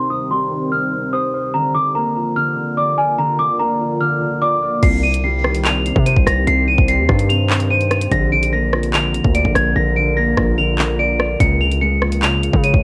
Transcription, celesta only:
0.10 D#6
0.31 C6
0.72 F6
1.13 D#6
1.54 A#5
1.75 D6
1.95 A#5
2.36 F6
2.77 D6
2.98 G#5
3.18 A#5
3.39 D6
3.60 A#5
4.01 F6
4.42 D6
4.83 C7
5.03 D#7
5.24 C7
5.65 F7
6.06 D#7
6.27 A#6
6.47 C7
6.68 D#7
6.88 C7
7.29 F7
7.70 D#7
8.12 A#6
8.32 D7
8.53 A#6
8.94 F7
9.35 D7
9.55 G#6
9.76 A#6
9.96 D7
10.17 A#6
10.58 F7
10.99 D7
11.40 C#7
11.61 F7
11.81 C#7
12.22 F7
12.64 D#7

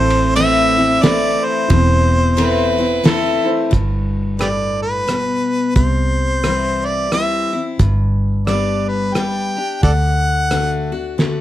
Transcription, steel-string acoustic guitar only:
Already playing: A2
0.35 E3 A3 C4 E4
0.77 C4 E4
1.02 E3 A3 C4 E4
1.70 E2
2.37 E3 A3 C4 E4
2.78 C4 E4
3.04 E3 A3 C4 E4
3.71 G2
4.39 A2
5.08 B2
5.76 C3
6.43 E3 G3 C4 E4
7.12 E3 G3 C4 E4
7.53 C4 E4
7.79 G2
8.47 G3 B3 D4 G4
9.15 G3 B3 D4 G4
9.57 D4 G4
9.83 D3
10.51 D3 A3 D4 F#4
10.92 D4 F#4
11.18 D3 A3 D4 F#4

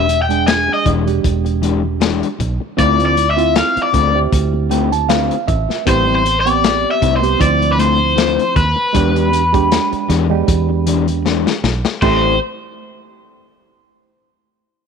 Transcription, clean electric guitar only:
0.08 muted clean electric guitar stroke
0.68 muted clean electric guitar stroke
0.85 E3 G#3 D4 G4
1.06 muted clean electric guitar stroke
1.24 muted clean electric guitar stroke
1.45 muted clean electric guitar stroke
1.62 E3 G#3 D4 G4
1.83 muted clean electric guitar stroke
2.01 E3 G#3 D4 G4
2.39 muted clean electric guitar stroke
2.60 muted clean electric guitar stroke
2.77 D3 A3 C4 F4
2.99 A3 C4 F4
3.17 muted clean electric guitar stroke
3.76 muted clean electric guitar stroke
3.93 D3 A3 C4 F4
4.14 muted clean electric guitar stroke
4.32 muted clean electric guitar stroke
4.53 muted clean electric guitar stroke
4.70 D3 A3 C4 F4
4.91 muted clean electric guitar stroke
5.09 D3 A3 C4 F4
5.48 muted clean electric guitar stroke
5.69 muted clean electric guitar stroke
5.86 A2 G3 C4 E4
6.07 G3 C4 E4
6.25 muted clean electric guitar stroke
6.84 muted clean electric guitar stroke
7.01 A2 G3 C4 E4
7.22 muted clean electric guitar stroke
7.40 muted clean electric guitar stroke
7.61 muted clean electric guitar stroke
7.77 D3 A3 C4 F4
8.00 muted clean electric guitar stroke
8.16 D3 A3 C4 F4
8.55 muted clean electric guitar stroke
8.76 muted clean electric guitar stroke
8.94 E3 G#3 D4 G4
9.14 G#3 D4 G4
9.32 muted clean electric guitar stroke
9.92 muted clean electric guitar stroke
10.09 E3 G#3 D4 G4
10.30 muted clean electric guitar stroke
10.47 muted clean electric guitar stroke
10.69 muted clean electric guitar stroke
10.86 E3 G#3 D4 G4
11.08 muted clean electric guitar stroke
11.25 E3 G#3 D4 G4
11.64 muted clean electric guitar stroke
11.86 muted clean electric guitar stroke
12.03 A3 E4 G4 C5

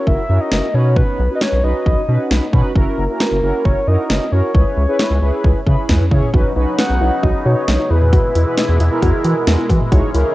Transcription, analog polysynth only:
Already playing: C#4 E4 F#4 A#4
0.29 C#4 E4 F#4 A#4
0.74 C#4 D#4 F#4 B4
1.30 C#4 D#4 F#4 B4
1.64 C#4 D#4 F#4 B4
2.08 C#4 D#4 F#4 B4
2.53 C#4 D#4 F#4 B4
2.76 C#4 E4 F#4 A#4
3.09 C#4 E4 F#4 A#4
3.43 C#4 E4 F#4 A#4
3.88 C#4 E4 F#4 A#4
4.32 C#4 E4 F#4 A#4
4.55 C#4 E4 G#4 B4
4.88 C#4 E4 G#4 B4
5.22 C#4 E4 G#4 B4
5.66 C#4 E4 G#4 B4
6.11 C#4 E4 G#4 C#5
6.34 C#4 D#4 F#4 B4
6.56 C#4 D#4 F#4 B4
7.01 C#4 D#4 F#4 B4
7.90 B3 E4 G#4 B4
8.46 B3 E4 G#4 B4
8.91 B3 E4 G#4 A#4
9.92 D#4 E4 G#4 C#5
10.14 D#4 E4 G#4 A#4

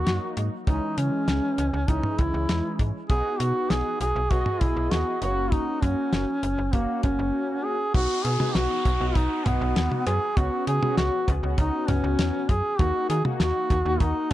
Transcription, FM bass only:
0.07 F#2
0.37 G#2
0.67 C#2
0.98 C#3
1.28 C#2
1.58 C#2
1.73 C#2
1.88 C#2
2.19 C#2
2.34 C#2
2.49 E2
2.79 G#2
3.10 B1
3.40 B2
3.70 B1
4.01 B1
4.16 B1
4.31 B1
4.61 B1
4.76 B1
4.91 D#2
5.22 F#1
5.82 F#2
6.13 F#1
6.43 F#1
6.58 F#1
6.73 F#1
7.04 F#1
7.19 F#1
7.94 B1
8.25 B2
8.55 B1
8.85 B1
9.01 B1
9.16 B1
9.46 B1
9.61 B1
9.76 D#2
10.07 F#2
10.37 C#2
10.67 C#3
10.98 C#2
11.28 C#2
11.43 C#2
11.58 C#2
11.89 C#2
12.04 C#2
12.19 E2
12.49 F#2
12.79 D#2
13.10 D#3
13.40 D#2
13.70 D#2
13.85 D#2
14.00 D#2

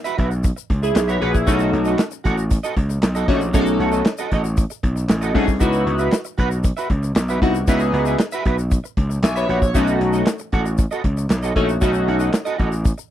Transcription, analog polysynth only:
0.83 E4 G#4
1.09 C#5
1.21 G#4 B4
1.34 E4 G#4
1.47 A3 C#4 D#4 F#4
3.28 A3 C#4 D#4 F#4
3.54 A3 C#4 D#4 G#4
3.61 A4
5.34 A3 C#4 D#4 G#4
5.60 B3 D#4 E4 F#4
7.41 B3 D#4 E4 F#4
7.68 B3 D#4 E4 G#4
9.23 E5 G#5
9.36 C#5 E5
9.62 C#5
9.75 A3 C#4 D#4 F#4
11.56 A3 C#4 D#4 F#4
11.81 A3 C#4 D#4 F#4

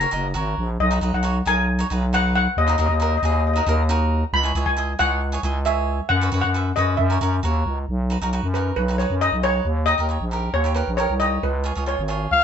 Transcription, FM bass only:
0.13 F#1
0.35 G#1
0.58 A#1
0.80 B1
1.01 B1
1.13 B1
1.46 B1
1.91 B1
2.57 D#2
2.79 D#2
2.89 D#2
3.23 D#2
3.67 D#2
4.33 C#2
4.55 C#2
4.66 C#2
5.00 C#2
5.43 C#2
6.10 F#2
6.32 F#2
6.44 F#2
6.77 F#2
6.99 F#2
7.21 F#2
7.43 D#2
7.66 C#2
7.89 B1
8.22 B1
8.43 F#2
8.77 B1
9.10 F#2
9.32 B1
9.65 D#2
9.99 D#2
10.21 A#1
10.54 D#2
10.88 A#1
11.10 C2
11.43 C#2
11.77 C#2
11.99 G#1
12.31 C#2

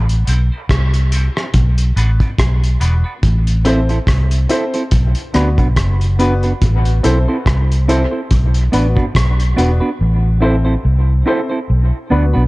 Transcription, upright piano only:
0.27 C4 E4 A4 C5
1.12 C4 E4 A4 C5
1.96 B3 D4 F#4 B4
2.80 B3 D4 F#4 B4
3.65 C4 E4 A4 C5
4.49 C4 E4 A4 C5
5.34 B3 D4 F#4 B4
6.19 B3 D4 F#4 B4
7.03 C4 E4 A4 C5
7.89 C4 E4 A4 C5
8.73 B3 D4 F#4 B4
9.58 B3 D4 F#4 B4
10.42 C4 E4 A4 C5
11.26 C4 E4 A4 C5
12.11 B3 D4 F#4 B4

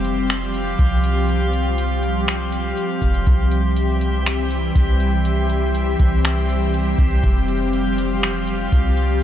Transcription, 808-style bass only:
Already playing: F1
0.79 C2
3.02 F1
3.27 C2
4.75 C2
6.00 C2
6.98 C2
7.24 F1
8.72 C2

